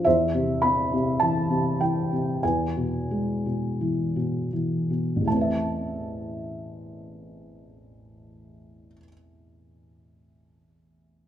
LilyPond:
<<
  \new Staff \with { instrumentName = "Felt piano" } { \time 4/4 \key a \minor \tempo 4 = 40 << { e''8 b''8 a''8 g''8 gis''4. r8 | a''1 | } \\ { c''2 b'2 | r1 | } >> }
  \new Staff \with { instrumentName = "Felt piano" } { \clef bass \time 4/4 \key a \minor e,16 c16 c'16 c16 e16 c16 e16 c16 e,16 b,16 gis16 b,16 e16 b,16 e16 b,16 | <a,, e, a c' b' e''>1 | }
>>